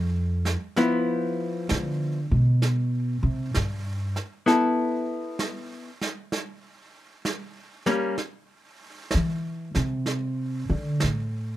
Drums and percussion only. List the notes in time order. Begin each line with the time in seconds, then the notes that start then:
0.45 snare
0.76 brush sweep, snare
1.69 snare
2.62 brush sweep, snare
3.54 snare
4.16 snare
4.47 brush sweep, snare
5.39 snare
6.01 snare
6.32 brush sweep, snare
7.25 snare
7.86 snare
8.18 brush sweep, snare
9.11 snare
9.75 snare
10.06 brush sweep, snare
11.00 snare